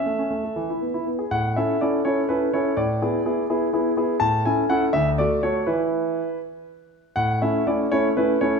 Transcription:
Already playing: E5
0.06 A3
0.19 C#4
0.31 A3
0.44 A4
0.56 E3
0.70 E4
0.81 B3
0.94 E4
1.07 B3
1.19 G#4
1.31 A2 F#5
1.56 C#4 E4 A4 E5
1.81 C#4 E4 A4 D5
2.05 C#4 E4 A4 C#5
2.29 C#4 E4 A4 B4
2.53 C#4 E4 A4 C#5
2.77 A2 D5
3.02 B3 E4 G#4
3.25 B3 E4 G#4
3.50 B3 E4 G#4
3.73 B3 E4 G#4
3.97 B3 E4 G#4
4.20 A2 A5
4.45 C#4 E4 A4 G#5
4.69 C#4 E4 A4 F#5
4.93 D2 E5
5.18 A3 F#4 A4 D5
5.43 A3 F#4 A4 C#5
5.67 E3 E4 B4
7.16 A2 F#5
7.42 A3 C#4 E4 E5
7.67 A3 C#4 E4 D5
7.92 A3 C#4 E4 C#5
8.17 A3 C#4 E4 B4
8.41 A3 C#4 E4 C#5

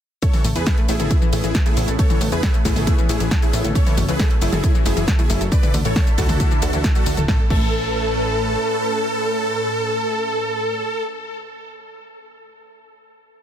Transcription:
0.22 A3 B3 C#4 A4 C#5, kick, closed hi-hat, shaker
0.33 E3, open hi-hat, mid tom, shaker
0.45 A1 A3, open hi-hat, mid tom, shaker
0.56 E2 E3 G#4 B4, closed hi-hat, shaker
0.67 A4, kick, snare, closed hi-hat, shaker
0.78 A3, closed hi-hat
0.89 A1 A3 E4 G#4, open hi-hat, shaker
1.00 A1 A4, closed hi-hat, mid tom, shaker
1.11 A3, kick, closed hi-hat, shaker
1.22 E3, shaker
1.33 A1 A3 E4 G#4, open hi-hat, shaker
1.44 A1 E3, closed hi-hat, shaker
1.55 A4, kick, snare, closed hi-hat, shaker
1.66 A3 E4 G#4, closed hi-hat, mid tom, shaker
1.77 A1 A3, open hi-hat, shaker
1.88 A1 A4, closed hi-hat, shaker
1.99 A3 A4 C#5, kick, closed hi-hat, shaker
2.10 E3, closed hi-hat, mid tom, shaker
2.21 A1 A3, open hi-hat, mid tom, shaker
2.32 E2 E3 G#4 B4, closed hi-hat, shaker
2.43 A4, kick, snare, closed hi-hat, shaker
2.54 A3, closed hi-hat, shaker
2.65 A1 A3 E4 G#4, kick, snare, open hi-hat, shaker
2.76 A1 A4, open hi-hat, mid tom, shaker
2.87 A3, kick, closed hi-hat, shaker
2.98 E3, shaker
3.09 A1 A3 E4 G#4, open hi-hat, shaker
3.20 A1 E3, closed hi-hat, shaker
3.31 A4, kick, snare, closed hi-hat, shaker
3.42 A3 E4 G#4, closed hi-hat, shaker
3.53 A1 A3, open hi-hat, shaker
3.64 A1 A4, closed hi-hat, mid tom, shaker
3.75 F#3 A3 A4 C#5, kick, closed hi-hat, shaker
3.86 E3, open hi-hat, mid tom, shaker
3.97 F#1 A3, open hi-hat, mid tom, shaker
4.08 C#2 E3 G#4 B4, closed hi-hat, shaker
4.20 A4, kick, snare, closed hi-hat, shaker
4.31 A3, closed hi-hat
4.41 F#1 A3 E4 G#4, open hi-hat, shaker
4.53 F#1 A4, closed hi-hat, mid tom, shaker
4.64 A3, kick, closed hi-hat, shaker
4.75 E3, shaker
4.86 F#1 A3 E4 G#4, open hi-hat, shaker
4.97 F#1 E3, closed hi-hat, shaker
5.08 A4, kick, snare, closed hi-hat, shaker
5.19 A3 E4 G#4, closed hi-hat, mid tom, shaker
5.30 F#1 A3, open hi-hat, shaker
5.41 F#1 A4, closed hi-hat, shaker
5.52 D3 A3 D4 E4 A4 B4 D5, kick, closed hi-hat, shaker
5.63 E3, closed hi-hat, mid tom, shaker
5.74 D2 A3, open hi-hat, mid tom, shaker
5.85 A1 E3 A4 C#5, closed hi-hat, shaker
5.96 A4, kick, snare, closed hi-hat, shaker
6.07 A3, closed hi-hat, shaker
6.18 D2 A3 F#4 A4, kick, snare, open hi-hat, shaker
6.29 D2 A4, open hi-hat, mid tom, shaker
6.40 A3, kick, closed hi-hat, shaker
6.51 E3, shaker
6.62 D2 A3 F#4 A4, open hi-hat, shaker
6.73 D2 E3, closed hi-hat, shaker
6.84 A4, kick, snare, closed hi-hat, shaker
6.95 A3 F#4 A4, closed hi-hat, shaker
7.06 D2 A3, open hi-hat, shaker
7.17 D1 A4, closed hi-hat, mid tom, shaker
7.28 A1 A2 A3 C#4 A4 B4, kick, snare
7.50 A1 A3 A4, kick, crash

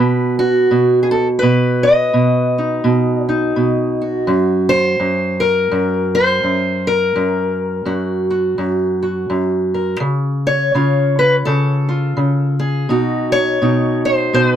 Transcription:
Already playing: B3 B4
0.00 B2
0.39 F#4
0.71 B2
1.03 G#4
1.11 A4
1.39 B2 B4
1.83 D#5
2.13 B2
2.58 D#4
2.84 B2
3.23 C#5
3.29 D#4
3.56 B2
4.01 F#4
4.27 F#2
4.69 C5
5.00 F#2
5.40 A#4
5.71 F#2
6.15 C5
6.43 F#2
6.87 A#4
7.16 F#2
7.85 F#2 F#4
8.30 F#4
8.58 F#2
9.03 F#4
9.30 F#2
9.74 A#4
10.00 C#3
10.47 C#5
10.74 C#3 F4
11.19 B4
11.45 C#3 A4
11.89 F4
12.17 C#3
12.59 G#4
12.89 B2 D#4 F#4
13.32 C#5
13.62 B2 D#4
14.05 C5
14.33 B2 C5
14.48 B4

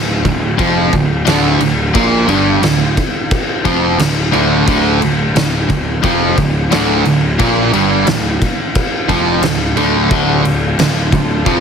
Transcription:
Already playing: D1 D2
0.24 D1 D2, kick, crash
0.57 F1 F2 F3, kick, crash
0.91 D1 D2, kick, crash
1.25 D1 D2 D3, snare, crash
1.60 D1 D2, crash
1.94 A#1 A#2 A#3, kick, crash
2.27 G1 G2 G3, crash
2.62 D1 D2, snare, crash
2.97 kick, crash
3.31 kick, crash
3.64 F1 F2 F3, kick, crash
3.99 D1 D2, snare, crash
4.32 D1 D2 D3, crash
4.66 D1 D2 D3, kick, crash
5.01 D1 D2, crash
5.35 D1 D2, snare, crash
5.69 D1 D2, kick, crash
6.02 F1 F2 F3, kick, crash
6.37 D1 D2, kick, crash
6.71 D1 D2 D3, snare, crash
7.05 D1 D2, crash
7.39 A#1 A#2 A#3, kick, crash
7.72 G1 G2 G3, crash
8.06 D1 D2, snare, crash
8.42 kick, crash
8.75 kick, crash
9.09 F1 F2 F3, kick, crash
9.42 D1 D2, snare, crash
9.77 D1 D2 D3, crash
10.11 D1 D2 D3 D4 F4 A4, kick, crash
10.45 D1 D2, crash
10.78 D1 D2, snare, crash
11.12 D1 D2, kick, crash
11.46 F1 F2 F3, kick, crash

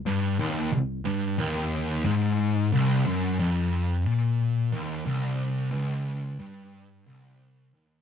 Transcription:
0.06 G2
0.39 D#2
0.73 C2
1.05 G2
1.38 D#2
2.05 G#2
2.73 C2
3.06 F#2
3.39 F2
4.06 A#2
4.72 D#2
5.06 C2
5.72 C#2
6.39 G2
7.06 C2
7.74 D#2

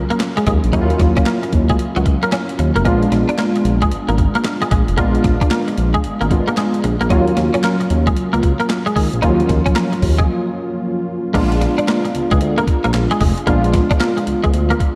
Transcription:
Already playing: F#3 A#3 C#4 F4
0.10 A#3, closed hi-hat
0.20 muted clean electric guitar stroke, snare, clap, closed hi-hat
0.37 G#3, closed hi-hat
0.47 D#2 G#3, kick, closed hi-hat
0.64 A#1, closed hi-hat
0.73 D#2 F#3 A#3 C#4 D#4 E4, kick, closed hi-hat
0.81 F4
0.90 closed hi-hat
0.99 D#2, muted clean electric guitar stroke, kick, snare, closed hi-hat
1.17 C#4, kick, closed hi-hat
1.26 A#3, snare, clap, closed hi-hat
1.43 muted clean electric guitar stroke, closed hi-hat
1.53 D#2, kick, closed hi-hat
1.69 G#3, kick, closed hi-hat
1.79 C#2, closed hi-hat
1.96 C#2 F#3, closed hi-hat
2.06 muted clean electric guitar stroke, kick, closed hi-hat
2.23 A#3, closed hi-hat
2.32 C#4, snare, clap, closed hi-hat
2.49 closed hi-hat
2.59 D#2, muted clean electric guitar stroke, closed hi-hat
2.76 F1 A#3, closed hi-hat
2.85 A#1 G#3 A#3 B3 D4 F4, kick, closed hi-hat
3.03 closed hi-hat
3.12 A#1, muted clean electric guitar stroke, snare, closed hi-hat
3.29 D4, closed hi-hat
3.38 A#3, snare, clap, closed hi-hat
3.56 muted clean electric guitar stroke, closed hi-hat
3.65 A#1, closed hi-hat
3.82 G#3, kick, closed hi-hat
3.92 G#1, closed hi-hat
4.09 G#1 A#3, closed hi-hat
4.18 muted clean electric guitar stroke, kick, closed hi-hat
4.35 A#3, closed hi-hat
4.44 muted clean electric guitar stroke, snare, clap, closed hi-hat
4.62 G#3, closed hi-hat
4.71 A#1 G#3, kick, closed hi-hat
4.88 F1, closed hi-hat
4.97 A#1 G#3 A#3 B3 D4 F4, kick, closed hi-hat
5.15 closed hi-hat
5.24 A#1, muted clean electric guitar stroke, kick, snare, closed hi-hat
5.41 D4, kick, closed hi-hat
5.51 A#3, snare, clap, closed hi-hat
5.68 muted clean electric guitar stroke, closed hi-hat
5.78 A#1, closed hi-hat
5.94 G#3, kick, closed hi-hat
6.04 G#1, closed hi-hat
6.21 G#1 A#3, closed hi-hat
6.30 G#3 B3 D4 F4, muted clean electric guitar stroke, kick, closed hi-hat
6.48 A#3, closed hi-hat
6.57 G#3, snare, clap, closed hi-hat
6.74 closed hi-hat
6.84 A#1, muted clean electric guitar stroke, closed hi-hat
7.01 A#1 A#3, closed hi-hat
7.10 D#2 F#3 A#3 C#4 D#4 F4, kick, closed hi-hat
7.28 closed hi-hat
7.37 D#2, muted clean electric guitar stroke, snare, closed hi-hat
7.54 C#4, closed hi-hat
7.64 A#3, snare, clap, closed hi-hat
7.80 muted clean electric guitar stroke, closed hi-hat
7.90 D#2, closed hi-hat
8.07 G#3, kick, closed hi-hat
8.17 C#2, closed hi-hat
8.33 C#2 A#3, closed hi-hat
8.43 muted clean electric guitar stroke, kick, closed hi-hat
8.60 A#3, closed hi-hat
8.69 muted clean electric guitar stroke, snare, clap, closed hi-hat
8.86 G#3, closed hi-hat
8.96 D#2 G#3, kick, open hi-hat
9.13 A#1, closed hi-hat
9.22 D#2 F3 A#3 C#4 D#4 F4, kick, closed hi-hat
9.28 F#3
9.40 closed hi-hat
9.49 D#2, muted clean electric guitar stroke, kick, snare, closed hi-hat
9.66 C#4, kick, closed hi-hat
9.75 A#3, snare, clap, closed hi-hat
9.92 muted clean electric guitar stroke, closed hi-hat
10.02 D#2, kick, open hi-hat
10.19 G#3, kick, closed hi-hat
11.34 A#1 G#3 A#3 B3 D4 F4, kick, closed hi-hat, crash
11.52 closed hi-hat
11.61 muted clean electric guitar stroke, snare, closed hi-hat
11.78 D4, closed hi-hat
11.88 A#3, snare, clap, closed hi-hat
12.05 muted clean electric guitar stroke, closed hi-hat
12.15 C#2, closed hi-hat
12.31 C#2 G#3, kick, closed hi-hat
12.41 D2, closed hi-hat
12.58 A#3, closed hi-hat
12.67 muted clean electric guitar stroke, kick, closed hi-hat
12.84 A#1 A#3, closed hi-hat
12.94 A#1, muted clean electric guitar stroke, snare, clap, closed hi-hat
13.11 G#3, closed hi-hat
13.21 F1 G#3, kick, open hi-hat
13.38 closed hi-hat
13.47 A#1 G#3 A#3 B3 D4 F4, kick, closed hi-hat
13.64 closed hi-hat
13.74 muted clean electric guitar stroke, kick, snare, closed hi-hat
13.91 D4, kick, closed hi-hat
14.00 A#3, snare, clap, closed hi-hat
14.17 muted clean electric guitar stroke, closed hi-hat
14.27 C#2, closed hi-hat
14.44 C#2 G#3, kick, closed hi-hat
14.54 D2, closed hi-hat
14.70 A#3, closed hi-hat
14.80 muted clean electric guitar stroke, kick, closed hi-hat

